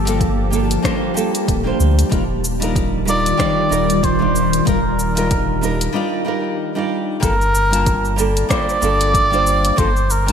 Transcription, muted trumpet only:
0, 0, Header, 1, 2, 480
1, 0, Start_track
1, 0, Key_signature, -2, "minor"
1, 0, Tempo, 638298
1, 1596, Time_signature, 4, 2, 24, 8
1, 7761, End_track
2, 0, Start_track
2, 0, Title_t, "Muted trumpet"
2, 0, Program_c, 0, 59
2, 0, Note_on_c, 0, 69, 83
2, 163, Note_off_c, 0, 69, 0
2, 2325, Note_on_c, 0, 74, 117
2, 3039, Note_on_c, 0, 72, 100
2, 3050, Note_off_c, 0, 74, 0
2, 3512, Note_off_c, 0, 72, 0
2, 3517, Note_on_c, 0, 70, 88
2, 4447, Note_off_c, 0, 70, 0
2, 5432, Note_on_c, 0, 70, 112
2, 6124, Note_off_c, 0, 70, 0
2, 6395, Note_on_c, 0, 74, 122
2, 7355, Note_on_c, 0, 72, 103
2, 7367, Note_off_c, 0, 74, 0
2, 7603, Note_on_c, 0, 70, 98
2, 7614, Note_off_c, 0, 72, 0
2, 7761, Note_off_c, 0, 70, 0
2, 7761, End_track
0, 0, End_of_file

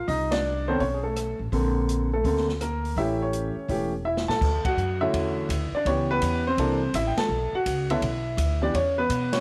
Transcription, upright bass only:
0, 0, Header, 1, 3, 480
1, 0, Start_track
1, 0, Tempo, 360794
1, 105, Time_signature, 4, 2, 24, 8
1, 12510, End_track
2, 0, Start_track
2, 0, Title_t, "Upright bass"
2, 0, Program_c, 0, 32
2, 104, Note_on_c, 0, 36, 86
2, 1018, Note_off_c, 0, 36, 0
2, 1067, Note_on_c, 0, 35, 72
2, 1807, Note_off_c, 0, 35, 0
2, 1854, Note_on_c, 0, 33, 65
2, 2012, Note_off_c, 0, 33, 0
2, 2024, Note_on_c, 0, 34, 88
2, 2938, Note_off_c, 0, 34, 0
2, 2983, Note_on_c, 0, 38, 80
2, 3897, Note_off_c, 0, 38, 0
2, 3942, Note_on_c, 0, 33, 76
2, 4686, Note_off_c, 0, 33, 0
2, 4901, Note_on_c, 0, 28, 77
2, 5645, Note_off_c, 0, 28, 0
2, 5702, Note_on_c, 0, 45, 66
2, 5857, Note_off_c, 0, 45, 0
2, 5865, Note_on_c, 0, 38, 74
2, 6158, Note_off_c, 0, 38, 0
2, 6341, Note_on_c, 0, 42, 70
2, 6810, Note_off_c, 0, 42, 0
2, 6828, Note_on_c, 0, 40, 75
2, 7293, Note_off_c, 0, 40, 0
2, 7303, Note_on_c, 0, 38, 93
2, 7597, Note_off_c, 0, 38, 0
2, 7785, Note_on_c, 0, 37, 77
2, 8251, Note_off_c, 0, 37, 0
2, 8267, Note_on_c, 0, 40, 73
2, 8732, Note_off_c, 0, 40, 0
2, 8745, Note_on_c, 0, 36, 78
2, 9211, Note_off_c, 0, 36, 0
2, 9228, Note_on_c, 0, 33, 90
2, 9518, Note_off_c, 0, 33, 0
2, 9694, Note_on_c, 0, 35, 81
2, 9991, Note_off_c, 0, 35, 0
2, 10189, Note_on_c, 0, 37, 73
2, 10652, Note_off_c, 0, 37, 0
2, 10665, Note_on_c, 0, 35, 85
2, 11130, Note_off_c, 0, 35, 0
2, 11140, Note_on_c, 0, 38, 95
2, 11607, Note_off_c, 0, 38, 0
2, 11627, Note_on_c, 0, 40, 83
2, 12090, Note_off_c, 0, 40, 0
2, 12101, Note_on_c, 0, 47, 81
2, 12510, Note_off_c, 0, 47, 0
2, 12510, End_track
3, 0, Start_track
3, 0, Title_t, "Muted upright bass strokes"
3, 4733, Note_on_c, 9, 29, 38
3, 4866, Note_off_c, 9, 29, 0
3, 6182, Note_on_c, 9, 29, 40
3, 6315, Note_off_c, 9, 29, 0
3, 7605, Note_on_c, 9, 29, 36
3, 7738, Note_off_c, 9, 29, 0
3, 10016, Note_on_c, 9, 29, 41
3, 10149, Note_off_c, 9, 29, 0
3, 12510, End_track
0, 0, End_of_file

